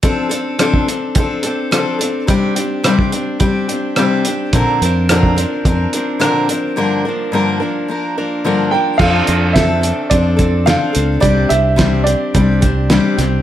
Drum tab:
CC |----------------|----------------|----------------|----------------|
HH |x-x-x-x-x-x-x-x-|x-x-x-x-x-x-x-x-|x-x-x-x-x-x-x-x-|----------------|
SD |----r-------r---|----r-------r---|----r-------r---|----------------|
BD |o----o--o-------|o----o--o-------|o----o--o-------|----------------|

CC |x---------------|----------------|
HH |--x-x-x-x-x-x-x-|x-x-x-x-x-x-x-x-|
SD |----o-------o---|----o-------o-o-|
BD |o---o---o-o-----|o---o---o-o-----|